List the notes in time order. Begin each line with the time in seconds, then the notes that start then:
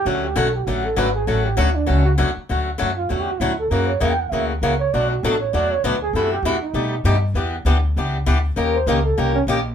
0.05 D2 D3 F#3 A3 C#4 F#4
0.24 G4
0.36 B1 D3 F#3 A3 C#4 F#4 A4
0.55 G4
0.65 A1 D3 F#3 A3 C#4 F#4
0.84 A4
0.96 G#1 D3 F#3 A3 C#4 F#4 B4
1.15 G#4
1.26 A1 D3 F#3 A3 C#4 F#4 A4
1.45 G4
1.56 D2 D3 F#3 A3 C#4 F#4
1.75 D4
1.86 C#2 D3 F#3 A3 C#4 F#4
2.05 F#4
2.18 E2 D3 F#3 A3 C#4 F#4
2.37 muted upright bass stroke
2.49 D2 D3 F#3 A3 C#4 F#4
2.78 F#2 D3 F#3 A3 C#4 F#4
2.97 F4
3.09 E2 D3 F#3 A3 C#4 F#4
3.20 G4
3.31 F#4
3.40 D2 D3 F#3 A3 C#4 E4 F#4
3.59 A4
3.70 F#2 C#3 E3 A#3 C#4 F#4 A#4
3.87 C#5
4.00 E2 C#3 E3 A#3 C#4 F#4 E5
4.10 G5
4.20 F#5
4.31 D2 C#3 E3 A#3 C#4 F#4 E5
4.48 G4
4.61 C#2 C#3 E3 A#3 C#4 F#4 A#4
4.79 C#5
4.93 B1 B2 F#3 A3 D4 F#4 D5
5.10 F#4
5.23 A1 B2 F#3 A3 D4 F#4 A4
5.40 C#5
5.53 E2 B2 F#3 A3 D4 F#4 D5
5.71 C#5
5.84 D2 B2 F#3 A3 D4 F#4 B4
6.02 G#4
6.13 F#2 C3 E3 A3 E4 F#4 A4
6.32 G4
6.43 E2 C3 E3 A3 E4 F#4
6.62 D#4
6.74 B2 G3 A3 D#4 G4
7.04 G2 B2 G3 A3 D#4 G4
7.34 E2 E3 B3 D4 G4
7.65 D2 E3 B3 D4 G4
7.97 C#2 E3 B3 D4 G4
8.26 D2 E3 B3 D4 G4
8.56 D#2 D#3 A#3 C#4 G4 A#4
8.74 C5
8.87 C#2 D#3 A#3 C#4 G4 A#4
9.05 A4
9.17 C2 D#3 A#3 C#4 G4 A#4
9.35 C#4
9.47 A#1 D#3 A#3 C#4 G4 A#4